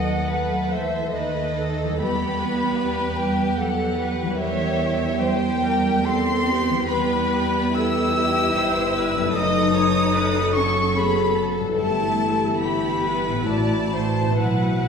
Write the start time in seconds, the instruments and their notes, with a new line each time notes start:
Already playing: double bass section D#2, harp D#3 A3 B3 F#4 B4, cello section F#3, french horn section A3 B4, violin section A4 F#5, viola section D#5, flute F#5
0.31 viola section B4
0.72 cello section E3, viola section C5, flute E5, violin section E5
1.12 cello section D#3, violin section A4 D#5, viola section B4, flute D#5
1.58 viola section A4
1.84 harp E3
1.88 harp G3 E4
1.98 french horn section G3, viola section G4, harp B4, flute B5
2.02 double bass section E2, cello section B3, violin section G4 B5, french horn section B4
2.41 viola section B4
3.17 cello section G3, flute G5, violin section G5
3.57 cello section F#3, viola section A4, flute F#5, violin section F#5
3.99 viola section B4
4.21 harp E3 G3
4.30 harp C#4
4.35 harp A#4, flute E5
4.39 double bass section E2, cello section E3, violin section G4 E5, french horn section A#4, viola section C#5
5.19 cello section G3, violin section G4 G5, viola section C5, flute G5
5.62 viola section A#4
6.05 cello section C4, viola section A4, flute C6, violin section C6
6.49 viola section G4
6.70 harp E3
6.74 harp G3
6.79 harp B3
6.83 harp B4
6.87 double bass section E2, french horn section G3 B4, cello section B3, violin section G4 B5, viola section B4, flute B5
7.75 cello section E4, violin section G4 E6, viola section A4, flute E6
8.18 viola section G4
8.56 double bass section G1, viola section C5
8.96 viola section B4
9.15 harp F#2
9.20 harp A3
9.25 harp D#4
9.29 harp A4
9.34 double bass section F#1, french horn section F#3, cello section D#4, violin section A4 D#6, viola section D#5, flute D#6
9.75 viola section C#5
10.14 french horn section A4, viola section B4
10.53 cello section C#4, viola section A4, flute C#6, violin section C#6
10.95 cello section B3, viola section G#4, flute B5, violin section B5
11.37 viola section A4
11.60 harp G2 B3
11.68 harp E4
11.72 harp G4
11.78 double bass section G1, french horn section E3 G4, cello section A3, violin section E4 A5, flute A5
12.60 cello section B3, violin section E4 B5, viola section G4, flute B5
13.03 viola section B4
13.28 harp A2
13.33 harp C4
13.37 harp E4
13.41 harp F#4
13.46 double bass section A1, cello section A3, violin section E4 A5, french horn section F#4, viola section D5, flute A5
13.58 flute B5
13.67 flute A5
13.73 flute B5
13.81 flute A5
13.88 flute B5
13.95 viola section C5, flute A5
14.22 harp B2 B3
14.31 harp E4
14.35 harp F#4
14.40 double bass section B1, cello section F#3, violin section E4 F#5, viola section B4, flute F#5